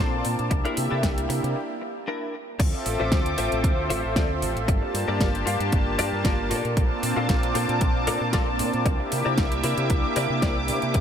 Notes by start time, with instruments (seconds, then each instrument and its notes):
Already playing: analog synth pad A#3 C4 D4 F4 A5 D6
0.00 fingered electric bass A#1, clean electric guitar D4 A4 C5
0.25 fingered electric bass A#2, open hi-hat
0.39 fingered electric bass A#2, closed hi-hat
0.50 fingered electric bass C2, analog synth pad A#3 D4 E4 G4 E5, muted clean electric guitar stroke, kick, closed hi-hat
0.65 clean electric guitar D4 E4 A#4, closed hi-hat
0.77 fingered electric bass C3, open hi-hat
0.91 fingered electric bass C3, clean electric guitar D4 E4 A4
1.03 fingered electric bass C2, kick, snare, closed hi-hat
1.18 closed hi-hat
1.28 fingered electric bass C3, analog synth pad A#3 D4 E4 G4, muted clean electric guitar stroke, open hi-hat
1.43 fingered electric bass C3, muted clean electric guitar stroke, closed hi-hat
1.55 muted clean electric guitar stroke
1.82 muted clean electric guitar stroke
2.08 clean electric guitar D4 E4 A#4
2.58 fingered electric bass D2, analog synth pad C4 F4 A4 C5 E5 D6, muted clean electric guitar stroke, kick, closed hi-hat, crash
2.74 muted clean electric guitar stroke
2.86 fingered electric bass A1, muted clean electric guitar stroke, open hi-hat
3.00 fingered electric bass A1, clean electric guitar F4 A4 C5 E5
3.12 fingered electric bass D2, kick, snare, closed hi-hat
3.26 closed hi-hat
3.36 fingered electric bass A1, analog synth pad C4 F4 A4 E5, clean electric guitar F4 A4 C5 E5, open hi-hat
3.52 fingered electric bass A1, closed hi-hat
3.64 fingered electric bass D2, kick, closed hi-hat
3.90 fingered electric bass A1, clean electric guitar F4 A4 C5 E5, open hi-hat
4.05 fingered electric bass A1
4.16 fingered electric bass D2, clean electric guitar F4 A4 C5 D5, kick, snare, closed hi-hat
4.42 fingered electric bass A1, muted clean electric guitar stroke, open hi-hat
4.56 fingered electric bass A1, closed hi-hat
4.67 fingered electric bass G1, analog synth pad A#3 D4 F4 G4 A5, muted clean electric guitar stroke, kick, closed hi-hat
4.82 muted clean electric guitar stroke
4.94 fingered electric bass G2, muted clean electric guitar stroke, open hi-hat
5.08 fingered electric bass G2, clean electric guitar F4 G4 A#4 D5
5.21 fingered electric bass G1, kick, snare, closed hi-hat
5.35 closed hi-hat
5.46 fingered electric bass G2, analog synth pad A#3 D4 F4 A5, clean electric guitar F4 G4 A#4 F5, open hi-hat
5.60 fingered electric bass G2, closed hi-hat
5.72 fingered electric bass G1, kick, closed hi-hat
5.98 fingered electric bass G2, clean electric guitar F4 G4 A#4 D5, open hi-hat
6.13 fingered electric bass G2
6.24 fingered electric bass G1, clean electric guitar F4 G4 A#4 D5, kick, snare, closed hi-hat
6.50 fingered electric bass A#2, analog synth pad A#3 A5 D6, clean electric guitar F4 A4 A#4 D5, open hi-hat
6.65 fingered electric bass A#2, closed hi-hat
6.76 fingered electric bass A#1, analog synth pad C4 D4 F4 A5, kick, closed hi-hat
6.91 muted clean electric guitar stroke
7.03 fingered electric bass A#2, muted clean electric guitar stroke, open hi-hat
7.16 fingered electric bass A#2, clean electric guitar F4 A4 A#4 F5
7.29 fingered electric bass A#1, kick, snare, closed hi-hat
7.43 closed hi-hat
7.54 fingered electric bass A#2, analog synth pad C4 D4 F4 A5, clean electric guitar F4 A4 A#4 C5, open hi-hat
7.69 fingered electric bass A#2, closed hi-hat
7.81 fingered electric bass A#1, kick, closed hi-hat
8.07 fingered electric bass A#2, clean electric guitar F4 A4 A#4 D5, open hi-hat
8.21 fingered electric bass A#2
8.33 fingered electric bass A#1, clean electric guitar F4 A4 A#4 D5, kick, snare, closed hi-hat
8.59 fingered electric bass A#2, muted clean electric guitar stroke, open hi-hat
8.74 fingered electric bass A#2, closed hi-hat
8.85 fingered electric bass C2, analog synth pad A#3 D4 E4 G4 E5 D6, muted clean electric guitar stroke, kick, closed hi-hat
8.99 muted clean electric guitar stroke
9.11 fingered electric bass C3, muted clean electric guitar stroke, open hi-hat
9.25 fingered electric bass C3, clean electric guitar E4 A#4 C5 D5
9.38 fingered electric bass C2, kick, snare, closed hi-hat
9.52 closed hi-hat
9.63 fingered electric bass C3, analog synth pad A#3 D4 E4 G4, clean electric guitar E4 A#4 C5 D5, open hi-hat
9.78 fingered electric bass C3, closed hi-hat
9.90 fingered electric bass C2, kick, closed hi-hat
10.16 fingered electric bass C3, clean electric guitar E4 A#4 C5 D5, open hi-hat
10.30 fingered electric bass C3
10.42 fingered electric bass C2, clean electric guitar E4 A#4 C5 D5, kick, snare, closed hi-hat
10.68 fingered electric bass C3, muted clean electric guitar stroke, open hi-hat
10.82 fingered electric bass C3, closed hi-hat
10.93 fingered electric bass D2, analog synth pad C4 F4 A4 C5 E5, muted clean electric guitar stroke, kick, closed hi-hat